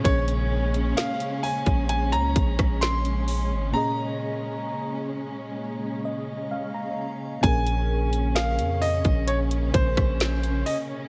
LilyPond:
<<
  \new Staff \with { instrumentName = "Grand piano" } { \time 4/4 \key bes \minor \tempo 4 = 65 des''4 f''8 aes''8 aes''16 bes''8. c'''4 | bes''2.~ bes''8 r8 | aes''4 f''8 ees''8 des''8 c''4 ees''8 | }
  \new Staff \with { instrumentName = "FM electric piano" } { \time 4/4 \key bes \minor << { r1 | r2 r8 ees''8 f''16 bes''8. | r1 | } \\ { <bes, bes des' aes' des''>1 | <bes, bes des' aes' ees''>1 | <bes, bes des' aes' bes'>1 | } >> }
  \new Staff \with { instrumentName = "String section" } { \clef bass \time 4/4 \key bes \minor <des aes des'>1~ | <des aes des'>1 | <des des'>1 | }
  \new Staff \with { instrumentName = "808-style bass" } { \clef bass \time 4/4 \key bes \minor bes,,4 r8. bes,,8 des,16 bes,,16 bes,,4 aes,,16 | r1 | bes,,4~ bes,,16 f,8 bes,,8. bes,,16 bes,,8. r8 | }
  \new DrumStaff \with { instrumentName = "Drums" } \drummode { \time 4/4 <hh bd>16 hh8 hh16 <hh sn>16 hh16 hho16 <hh bd>16 hh16 hh16 <hh bd>16 <hh bd ss>16 <hh sn>16 hh16 hho8 | r4 r4 r4 r4 | <hh bd>16 hh8 hh16 <hh sn>16 hh16 hho16 <hh bd>16 hh16 hh16 <hh bd>16 <hh bd ss>16 <hh sn>16 hh16 hho8 | }
>>